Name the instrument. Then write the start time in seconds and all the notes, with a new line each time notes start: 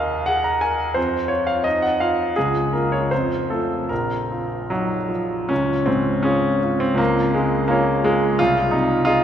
grand piano
Already playing: D#2 A#4 D#5 F5
0.26 G#4 F#5
0.44 A#5
0.61 A#4 G#5
0.94 F2 C5
1.28 F4 C#5
1.47 F5
1.64 D#4 D#5
1.82 F#5
2.00 F4 F5
2.36 C#2 G#4
2.73 A#3 F4 A#4
2.92 C#5
3.11 F2 C5
3.50 A3 F4 A4
3.89 A#1 A#4
4.32 F4
4.70 F#3 D#4
5.09 F3 F4
5.49 C#2 C#4
5.86 G#2 C4
6.23 C#4 F4 G#4 C#5
6.62 F4
6.80 C4
6.95 C#2 A#3
7.34 C#3 G#3
7.68 A#3 F4 A#4 C#5
8.04 G#3 F4
8.39 C2 F4
8.71 C3 D#4
9.05 F4 G#4 D#5